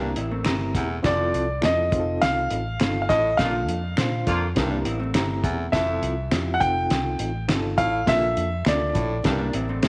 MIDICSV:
0, 0, Header, 1, 8, 480
1, 0, Start_track
1, 0, Tempo, 585766
1, 855, Time_signature, 4, 2, 24, 8
1, 8096, End_track
2, 0, Start_track
2, 0, Title_t, "Grand piano"
2, 0, Program_c, 0, 0
2, 0, Note_on_c, 0, 70, 76
2, 584, Note_off_c, 0, 70, 0
2, 865, Note_on_c, 0, 74, 88
2, 1352, Note_on_c, 0, 75, 88
2, 1355, Note_off_c, 0, 74, 0
2, 1816, Note_on_c, 0, 77, 103
2, 1838, Note_off_c, 0, 75, 0
2, 2460, Note_off_c, 0, 77, 0
2, 2473, Note_on_c, 0, 77, 60
2, 2532, Note_on_c, 0, 75, 91
2, 2533, Note_off_c, 0, 77, 0
2, 2765, Note_on_c, 0, 77, 91
2, 2781, Note_off_c, 0, 75, 0
2, 3457, Note_off_c, 0, 77, 0
2, 4689, Note_on_c, 0, 76, 80
2, 5358, Note_on_c, 0, 78, 79
2, 5375, Note_off_c, 0, 76, 0
2, 5412, Note_on_c, 0, 79, 101
2, 5415, Note_off_c, 0, 78, 0
2, 6101, Note_off_c, 0, 79, 0
2, 6373, Note_on_c, 0, 77, 103
2, 6622, Note_off_c, 0, 77, 0
2, 6625, Note_on_c, 0, 76, 103
2, 7113, Note_on_c, 0, 74, 75
2, 7115, Note_off_c, 0, 76, 0
2, 8096, Note_off_c, 0, 74, 0
2, 8096, End_track
3, 0, Start_track
3, 0, Title_t, "Reed electric piano"
3, 0, Program_c, 1, 4
3, 0, Note_on_c, 1, 60, 71
3, 0, Note_on_c, 1, 64, 65
3, 0, Note_on_c, 1, 67, 66
3, 0, Note_on_c, 1, 70, 79
3, 231, Note_off_c, 1, 60, 0
3, 232, Note_off_c, 1, 67, 0
3, 233, Note_off_c, 1, 64, 0
3, 236, Note_off_c, 1, 70, 0
3, 363, Note_on_c, 1, 60, 83
3, 368, Note_on_c, 1, 64, 76
3, 374, Note_on_c, 1, 67, 69
3, 377, Note_on_c, 1, 82, 94
3, 708, Note_off_c, 1, 60, 0
3, 710, Note_off_c, 1, 64, 0
3, 713, Note_off_c, 1, 67, 0
3, 715, Note_off_c, 1, 82, 0
3, 839, Note_on_c, 1, 60, 91
3, 844, Note_on_c, 1, 64, 81
3, 849, Note_on_c, 1, 65, 81
3, 853, Note_on_c, 1, 67, 81
3, 907, Note_off_c, 1, 67, 0
3, 907, Note_on_c, 1, 69, 95
3, 1186, Note_off_c, 1, 60, 0
3, 1188, Note_off_c, 1, 64, 0
3, 1190, Note_off_c, 1, 65, 0
3, 1220, Note_off_c, 1, 69, 0
3, 1321, Note_on_c, 1, 60, 69
3, 1324, Note_on_c, 1, 64, 65
3, 1324, Note_on_c, 1, 65, 62
3, 1330, Note_on_c, 1, 69, 76
3, 1561, Note_off_c, 1, 60, 0
3, 1570, Note_off_c, 1, 64, 0
3, 1570, Note_off_c, 1, 65, 0
3, 1571, Note_on_c, 1, 60, 73
3, 1573, Note_off_c, 1, 69, 0
3, 1576, Note_on_c, 1, 63, 68
3, 1580, Note_on_c, 1, 65, 73
3, 1583, Note_on_c, 1, 68, 64
3, 1632, Note_off_c, 1, 68, 0
3, 1636, Note_on_c, 1, 69, 82
3, 2149, Note_off_c, 1, 60, 0
3, 2152, Note_off_c, 1, 63, 0
3, 2154, Note_off_c, 1, 65, 0
3, 2182, Note_off_c, 1, 69, 0
3, 2296, Note_on_c, 1, 60, 67
3, 2301, Note_on_c, 1, 63, 60
3, 2305, Note_on_c, 1, 65, 60
3, 2309, Note_on_c, 1, 69, 71
3, 2634, Note_off_c, 1, 60, 0
3, 2637, Note_off_c, 1, 63, 0
3, 2639, Note_off_c, 1, 65, 0
3, 2641, Note_off_c, 1, 69, 0
3, 2773, Note_on_c, 1, 58, 90
3, 2776, Note_on_c, 1, 62, 85
3, 2779, Note_on_c, 1, 65, 81
3, 2788, Note_on_c, 1, 69, 98
3, 3113, Note_off_c, 1, 58, 0
3, 3114, Note_off_c, 1, 62, 0
3, 3116, Note_off_c, 1, 65, 0
3, 3120, Note_off_c, 1, 69, 0
3, 3248, Note_on_c, 1, 58, 65
3, 3251, Note_on_c, 1, 62, 59
3, 3257, Note_on_c, 1, 65, 60
3, 3261, Note_on_c, 1, 72, 75
3, 3590, Note_off_c, 1, 58, 0
3, 3591, Note_off_c, 1, 62, 0
3, 3595, Note_off_c, 1, 65, 0
3, 3597, Note_off_c, 1, 72, 0
3, 3730, Note_on_c, 1, 60, 80
3, 3737, Note_on_c, 1, 64, 73
3, 3738, Note_on_c, 1, 67, 80
3, 3742, Note_on_c, 1, 70, 93
3, 4071, Note_off_c, 1, 60, 0
3, 4075, Note_off_c, 1, 64, 0
3, 4075, Note_off_c, 1, 67, 0
3, 4077, Note_off_c, 1, 70, 0
3, 4217, Note_on_c, 1, 60, 83
3, 4221, Note_on_c, 1, 64, 76
3, 4223, Note_on_c, 1, 67, 67
3, 4227, Note_on_c, 1, 82, 89
3, 4555, Note_off_c, 1, 60, 0
3, 4557, Note_off_c, 1, 64, 0
3, 4558, Note_off_c, 1, 67, 0
3, 4560, Note_off_c, 1, 82, 0
3, 4689, Note_on_c, 1, 60, 89
3, 4695, Note_on_c, 1, 64, 85
3, 4699, Note_on_c, 1, 65, 78
3, 4703, Note_on_c, 1, 69, 102
3, 5031, Note_off_c, 1, 60, 0
3, 5034, Note_off_c, 1, 64, 0
3, 5036, Note_off_c, 1, 65, 0
3, 5037, Note_off_c, 1, 69, 0
3, 5171, Note_on_c, 1, 60, 68
3, 5175, Note_on_c, 1, 64, 63
3, 5177, Note_on_c, 1, 65, 62
3, 5181, Note_on_c, 1, 67, 70
3, 5399, Note_off_c, 1, 60, 0
3, 5407, Note_off_c, 1, 65, 0
3, 5409, Note_on_c, 1, 60, 76
3, 5412, Note_on_c, 1, 63, 65
3, 5415, Note_off_c, 1, 64, 0
3, 5417, Note_on_c, 1, 65, 72
3, 5418, Note_off_c, 1, 67, 0
3, 5424, Note_on_c, 1, 69, 81
3, 5988, Note_off_c, 1, 60, 0
3, 5990, Note_off_c, 1, 63, 0
3, 5992, Note_off_c, 1, 65, 0
3, 5996, Note_off_c, 1, 69, 0
3, 6133, Note_on_c, 1, 60, 81
3, 6135, Note_on_c, 1, 63, 73
3, 6138, Note_on_c, 1, 65, 74
3, 6145, Note_on_c, 1, 67, 70
3, 6193, Note_off_c, 1, 67, 0
3, 6199, Note_on_c, 1, 69, 91
3, 6473, Note_off_c, 1, 60, 0
3, 6474, Note_off_c, 1, 63, 0
3, 6475, Note_off_c, 1, 65, 0
3, 6506, Note_off_c, 1, 69, 0
3, 6607, Note_on_c, 1, 58, 88
3, 6613, Note_on_c, 1, 61, 62
3, 6614, Note_on_c, 1, 65, 83
3, 6618, Note_on_c, 1, 69, 92
3, 6665, Note_on_c, 1, 62, 80
3, 6667, Note_off_c, 1, 61, 0
3, 6950, Note_off_c, 1, 58, 0
3, 6953, Note_off_c, 1, 65, 0
3, 6955, Note_off_c, 1, 69, 0
3, 6979, Note_off_c, 1, 62, 0
3, 7095, Note_on_c, 1, 58, 70
3, 7098, Note_on_c, 1, 61, 49
3, 7103, Note_on_c, 1, 65, 64
3, 7106, Note_on_c, 1, 69, 74
3, 7150, Note_off_c, 1, 61, 0
3, 7151, Note_on_c, 1, 62, 61
3, 7434, Note_off_c, 1, 58, 0
3, 7437, Note_off_c, 1, 65, 0
3, 7439, Note_off_c, 1, 69, 0
3, 7462, Note_off_c, 1, 62, 0
3, 7568, Note_on_c, 1, 60, 75
3, 7574, Note_on_c, 1, 64, 65
3, 7578, Note_on_c, 1, 67, 67
3, 7579, Note_on_c, 1, 69, 65
3, 7630, Note_off_c, 1, 69, 0
3, 7634, Note_on_c, 1, 70, 77
3, 7910, Note_off_c, 1, 60, 0
3, 7913, Note_off_c, 1, 64, 0
3, 7915, Note_off_c, 1, 67, 0
3, 7943, Note_off_c, 1, 70, 0
3, 8053, Note_on_c, 1, 60, 86
3, 8059, Note_on_c, 1, 64, 76
3, 8063, Note_on_c, 1, 67, 78
3, 8065, Note_on_c, 1, 69, 73
3, 8096, Note_off_c, 1, 60, 0
3, 8096, Note_off_c, 1, 64, 0
3, 8096, Note_off_c, 1, 67, 0
3, 8096, Note_off_c, 1, 69, 0
3, 8096, End_track
4, 0, Start_track
4, 0, Title_t, "Hollow-body jazz guitar"
4, 0, Program_c, 2, 26
4, 12, Note_on_c, 2, 62, 73
4, 20, Note_on_c, 2, 58, 64
4, 128, Note_off_c, 2, 62, 0
4, 132, Note_off_c, 2, 58, 0
4, 135, Note_on_c, 2, 64, 84
4, 140, Note_on_c, 2, 60, 67
4, 246, Note_off_c, 2, 60, 0
4, 250, Note_off_c, 2, 64, 0
4, 256, Note_on_c, 2, 57, 70
4, 258, Note_on_c, 2, 60, 66
4, 826, Note_off_c, 2, 60, 0
4, 827, Note_off_c, 2, 57, 0
4, 3857, Note_on_c, 2, 62, 69
4, 3863, Note_on_c, 2, 58, 61
4, 3971, Note_off_c, 2, 62, 0
4, 3973, Note_off_c, 2, 58, 0
4, 3975, Note_on_c, 2, 64, 76
4, 3982, Note_on_c, 2, 60, 66
4, 4082, Note_off_c, 2, 60, 0
4, 4089, Note_off_c, 2, 64, 0
4, 4092, Note_on_c, 2, 60, 74
4, 4096, Note_on_c, 2, 57, 61
4, 4664, Note_off_c, 2, 60, 0
4, 4666, Note_off_c, 2, 57, 0
4, 7696, Note_on_c, 2, 62, 81
4, 7700, Note_on_c, 2, 58, 63
4, 7810, Note_off_c, 2, 62, 0
4, 7812, Note_off_c, 2, 58, 0
4, 7824, Note_on_c, 2, 60, 73
4, 7825, Note_on_c, 2, 64, 65
4, 7932, Note_off_c, 2, 60, 0
4, 7933, Note_off_c, 2, 64, 0
4, 7942, Note_on_c, 2, 60, 81
4, 7949, Note_on_c, 2, 57, 64
4, 8096, Note_off_c, 2, 57, 0
4, 8096, Note_off_c, 2, 60, 0
4, 8096, End_track
5, 0, Start_track
5, 0, Title_t, "Horn section"
5, 0, Program_c, 3, 61
5, 2774, Note_on_c, 3, 58, 78
5, 2777, Note_on_c, 3, 50, 77
5, 2779, Note_on_c, 3, 65, 86
5, 2877, Note_off_c, 3, 58, 0
5, 2878, Note_off_c, 3, 50, 0
5, 2880, Note_off_c, 3, 65, 0
5, 3493, Note_on_c, 3, 50, 86
5, 3495, Note_on_c, 3, 58, 86
5, 3497, Note_on_c, 3, 65, 93
5, 3647, Note_off_c, 3, 50, 0
5, 3648, Note_off_c, 3, 58, 0
5, 3650, Note_off_c, 3, 65, 0
5, 8096, End_track
6, 0, Start_track
6, 0, Title_t, "Baritone saxophone"
6, 0, Program_c, 4, 67
6, 0, Note_on_c, 4, 43, 80
6, 86, Note_off_c, 4, 43, 0
6, 619, Note_on_c, 4, 40, 75
6, 810, Note_off_c, 4, 40, 0
6, 855, Note_on_c, 4, 41, 79
6, 1194, Note_off_c, 4, 41, 0
6, 2537, Note_on_c, 4, 45, 79
6, 2728, Note_off_c, 4, 45, 0
6, 2772, Note_on_c, 4, 46, 86
6, 2966, Note_off_c, 4, 46, 0
6, 3499, Note_on_c, 4, 41, 72
6, 3689, Note_off_c, 4, 41, 0
6, 3738, Note_on_c, 4, 43, 76
6, 3929, Note_off_c, 4, 43, 0
6, 4451, Note_on_c, 4, 40, 72
6, 4645, Note_off_c, 4, 40, 0
6, 4691, Note_on_c, 4, 41, 81
6, 5032, Note_off_c, 4, 41, 0
6, 6371, Note_on_c, 4, 45, 82
6, 6565, Note_off_c, 4, 45, 0
6, 6611, Note_on_c, 4, 46, 82
6, 6805, Note_off_c, 4, 46, 0
6, 7328, Note_on_c, 4, 45, 78
6, 7523, Note_off_c, 4, 45, 0
6, 7576, Note_on_c, 4, 43, 81
6, 7768, Note_off_c, 4, 43, 0
6, 8096, End_track
7, 0, Start_track
7, 0, Title_t, "Fingered electric bass"
7, 0, Program_c, 5, 33
7, 0, Note_on_c, 5, 36, 101
7, 108, Note_off_c, 5, 36, 0
7, 135, Note_on_c, 5, 33, 88
7, 378, Note_on_c, 5, 31, 85
7, 390, Note_off_c, 5, 33, 0
7, 613, Note_off_c, 5, 31, 0
7, 613, Note_on_c, 5, 28, 92
7, 824, Note_off_c, 5, 28, 0
7, 854, Note_on_c, 5, 29, 100
7, 1064, Note_off_c, 5, 29, 0
7, 1098, Note_on_c, 5, 36, 92
7, 1307, Note_off_c, 5, 36, 0
7, 1341, Note_on_c, 5, 41, 101
7, 1548, Note_off_c, 5, 41, 0
7, 1574, Note_on_c, 5, 29, 94
7, 1785, Note_off_c, 5, 29, 0
7, 1819, Note_on_c, 5, 36, 99
7, 2027, Note_off_c, 5, 36, 0
7, 2057, Note_on_c, 5, 33, 89
7, 2266, Note_off_c, 5, 33, 0
7, 2298, Note_on_c, 5, 31, 95
7, 2507, Note_off_c, 5, 31, 0
7, 2537, Note_on_c, 5, 33, 83
7, 2746, Note_off_c, 5, 33, 0
7, 2779, Note_on_c, 5, 34, 89
7, 3020, Note_off_c, 5, 34, 0
7, 3020, Note_on_c, 5, 41, 83
7, 3228, Note_off_c, 5, 41, 0
7, 3259, Note_on_c, 5, 46, 103
7, 3467, Note_off_c, 5, 46, 0
7, 3501, Note_on_c, 5, 41, 75
7, 3708, Note_off_c, 5, 41, 0
7, 3744, Note_on_c, 5, 36, 104
7, 3950, Note_off_c, 5, 36, 0
7, 3978, Note_on_c, 5, 33, 86
7, 4215, Note_on_c, 5, 31, 79
7, 4227, Note_off_c, 5, 33, 0
7, 4457, Note_off_c, 5, 31, 0
7, 4457, Note_on_c, 5, 28, 81
7, 4666, Note_off_c, 5, 28, 0
7, 4695, Note_on_c, 5, 29, 96
7, 4905, Note_off_c, 5, 29, 0
7, 4937, Note_on_c, 5, 36, 88
7, 5146, Note_off_c, 5, 36, 0
7, 5175, Note_on_c, 5, 41, 100
7, 5385, Note_off_c, 5, 41, 0
7, 5417, Note_on_c, 5, 29, 94
7, 5626, Note_off_c, 5, 29, 0
7, 5656, Note_on_c, 5, 36, 96
7, 5866, Note_off_c, 5, 36, 0
7, 5897, Note_on_c, 5, 33, 89
7, 6106, Note_off_c, 5, 33, 0
7, 6132, Note_on_c, 5, 31, 92
7, 6343, Note_off_c, 5, 31, 0
7, 6378, Note_on_c, 5, 33, 83
7, 6587, Note_off_c, 5, 33, 0
7, 6618, Note_on_c, 5, 34, 89
7, 6827, Note_off_c, 5, 34, 0
7, 6856, Note_on_c, 5, 41, 80
7, 7065, Note_off_c, 5, 41, 0
7, 7098, Note_on_c, 5, 38, 94
7, 7306, Note_off_c, 5, 38, 0
7, 7337, Note_on_c, 5, 34, 84
7, 7546, Note_off_c, 5, 34, 0
7, 7582, Note_on_c, 5, 36, 100
7, 7789, Note_off_c, 5, 36, 0
7, 7818, Note_on_c, 5, 33, 94
7, 8026, Note_off_c, 5, 33, 0
7, 8057, Note_on_c, 5, 31, 87
7, 8096, Note_off_c, 5, 31, 0
7, 8096, End_track
8, 0, Start_track
8, 0, Title_t, "Drums"
8, 131, Note_on_c, 9, 42, 78
8, 213, Note_off_c, 9, 42, 0
8, 365, Note_on_c, 9, 26, 91
8, 372, Note_on_c, 9, 42, 83
8, 375, Note_on_c, 9, 38, 107
8, 447, Note_off_c, 9, 26, 0
8, 454, Note_off_c, 9, 42, 0
8, 457, Note_off_c, 9, 38, 0
8, 612, Note_on_c, 9, 36, 93
8, 613, Note_on_c, 9, 38, 31
8, 614, Note_on_c, 9, 42, 65
8, 694, Note_off_c, 9, 36, 0
8, 695, Note_off_c, 9, 38, 0
8, 696, Note_off_c, 9, 42, 0
8, 854, Note_on_c, 9, 36, 108
8, 854, Note_on_c, 9, 42, 86
8, 855, Note_on_c, 9, 38, 114
8, 936, Note_off_c, 9, 36, 0
8, 936, Note_off_c, 9, 38, 0
8, 936, Note_off_c, 9, 42, 0
8, 1099, Note_on_c, 9, 42, 64
8, 1181, Note_off_c, 9, 42, 0
8, 1328, Note_on_c, 9, 26, 80
8, 1339, Note_on_c, 9, 38, 107
8, 1342, Note_on_c, 9, 42, 98
8, 1410, Note_off_c, 9, 26, 0
8, 1421, Note_off_c, 9, 38, 0
8, 1424, Note_off_c, 9, 42, 0
8, 1575, Note_on_c, 9, 36, 97
8, 1575, Note_on_c, 9, 42, 66
8, 1657, Note_off_c, 9, 36, 0
8, 1657, Note_off_c, 9, 42, 0
8, 1817, Note_on_c, 9, 42, 88
8, 1823, Note_on_c, 9, 38, 109
8, 1899, Note_off_c, 9, 42, 0
8, 1905, Note_off_c, 9, 38, 0
8, 2053, Note_on_c, 9, 42, 75
8, 2135, Note_off_c, 9, 42, 0
8, 2292, Note_on_c, 9, 26, 88
8, 2298, Note_on_c, 9, 42, 82
8, 2302, Note_on_c, 9, 38, 107
8, 2374, Note_off_c, 9, 26, 0
8, 2380, Note_off_c, 9, 42, 0
8, 2384, Note_off_c, 9, 38, 0
8, 2536, Note_on_c, 9, 36, 96
8, 2540, Note_on_c, 9, 38, 32
8, 2541, Note_on_c, 9, 42, 64
8, 2618, Note_off_c, 9, 36, 0
8, 2622, Note_off_c, 9, 38, 0
8, 2623, Note_off_c, 9, 42, 0
8, 2777, Note_on_c, 9, 36, 108
8, 2778, Note_on_c, 9, 42, 88
8, 2779, Note_on_c, 9, 38, 112
8, 2859, Note_off_c, 9, 36, 0
8, 2860, Note_off_c, 9, 42, 0
8, 2861, Note_off_c, 9, 38, 0
8, 3020, Note_on_c, 9, 42, 66
8, 3102, Note_off_c, 9, 42, 0
8, 3254, Note_on_c, 9, 26, 78
8, 3261, Note_on_c, 9, 38, 105
8, 3264, Note_on_c, 9, 42, 89
8, 3336, Note_off_c, 9, 26, 0
8, 3343, Note_off_c, 9, 38, 0
8, 3346, Note_off_c, 9, 42, 0
8, 3497, Note_on_c, 9, 42, 67
8, 3499, Note_on_c, 9, 36, 81
8, 3579, Note_off_c, 9, 42, 0
8, 3581, Note_off_c, 9, 36, 0
8, 3737, Note_on_c, 9, 42, 84
8, 3742, Note_on_c, 9, 36, 84
8, 3743, Note_on_c, 9, 38, 119
8, 3819, Note_off_c, 9, 42, 0
8, 3824, Note_off_c, 9, 36, 0
8, 3825, Note_off_c, 9, 38, 0
8, 3976, Note_on_c, 9, 42, 78
8, 4058, Note_off_c, 9, 42, 0
8, 4213, Note_on_c, 9, 26, 87
8, 4216, Note_on_c, 9, 42, 83
8, 4219, Note_on_c, 9, 38, 101
8, 4295, Note_off_c, 9, 26, 0
8, 4297, Note_off_c, 9, 42, 0
8, 4301, Note_off_c, 9, 38, 0
8, 4455, Note_on_c, 9, 36, 90
8, 4459, Note_on_c, 9, 42, 64
8, 4537, Note_off_c, 9, 36, 0
8, 4541, Note_off_c, 9, 42, 0
8, 4696, Note_on_c, 9, 36, 108
8, 4697, Note_on_c, 9, 42, 84
8, 4698, Note_on_c, 9, 38, 107
8, 4778, Note_off_c, 9, 36, 0
8, 4779, Note_off_c, 9, 42, 0
8, 4780, Note_off_c, 9, 38, 0
8, 4939, Note_on_c, 9, 42, 70
8, 5021, Note_off_c, 9, 42, 0
8, 5175, Note_on_c, 9, 26, 82
8, 5177, Note_on_c, 9, 38, 104
8, 5180, Note_on_c, 9, 42, 87
8, 5257, Note_off_c, 9, 26, 0
8, 5259, Note_off_c, 9, 38, 0
8, 5262, Note_off_c, 9, 42, 0
8, 5416, Note_on_c, 9, 36, 89
8, 5418, Note_on_c, 9, 42, 66
8, 5498, Note_off_c, 9, 36, 0
8, 5500, Note_off_c, 9, 42, 0
8, 5657, Note_on_c, 9, 42, 82
8, 5663, Note_on_c, 9, 38, 111
8, 5739, Note_off_c, 9, 42, 0
8, 5745, Note_off_c, 9, 38, 0
8, 5893, Note_on_c, 9, 42, 84
8, 5975, Note_off_c, 9, 42, 0
8, 6135, Note_on_c, 9, 26, 98
8, 6136, Note_on_c, 9, 42, 79
8, 6139, Note_on_c, 9, 38, 103
8, 6217, Note_off_c, 9, 26, 0
8, 6218, Note_off_c, 9, 42, 0
8, 6221, Note_off_c, 9, 38, 0
8, 6375, Note_on_c, 9, 36, 97
8, 6378, Note_on_c, 9, 42, 67
8, 6457, Note_off_c, 9, 36, 0
8, 6459, Note_off_c, 9, 42, 0
8, 6615, Note_on_c, 9, 36, 111
8, 6617, Note_on_c, 9, 42, 84
8, 6618, Note_on_c, 9, 38, 120
8, 6697, Note_off_c, 9, 36, 0
8, 6699, Note_off_c, 9, 38, 0
8, 6699, Note_off_c, 9, 42, 0
8, 6858, Note_on_c, 9, 42, 72
8, 6940, Note_off_c, 9, 42, 0
8, 7087, Note_on_c, 9, 26, 79
8, 7099, Note_on_c, 9, 38, 114
8, 7102, Note_on_c, 9, 42, 93
8, 7169, Note_off_c, 9, 26, 0
8, 7181, Note_off_c, 9, 38, 0
8, 7184, Note_off_c, 9, 42, 0
8, 7333, Note_on_c, 9, 42, 67
8, 7336, Note_on_c, 9, 36, 78
8, 7415, Note_off_c, 9, 42, 0
8, 7418, Note_off_c, 9, 36, 0
8, 7574, Note_on_c, 9, 42, 83
8, 7579, Note_on_c, 9, 36, 80
8, 7580, Note_on_c, 9, 38, 118
8, 7656, Note_off_c, 9, 42, 0
8, 7661, Note_off_c, 9, 36, 0
8, 7662, Note_off_c, 9, 38, 0
8, 7813, Note_on_c, 9, 42, 77
8, 7894, Note_off_c, 9, 42, 0
8, 8051, Note_on_c, 9, 42, 84
8, 8053, Note_on_c, 9, 26, 97
8, 8055, Note_on_c, 9, 38, 101
8, 8096, Note_off_c, 9, 26, 0
8, 8096, Note_off_c, 9, 38, 0
8, 8096, Note_off_c, 9, 42, 0
8, 8096, End_track
0, 0, End_of_file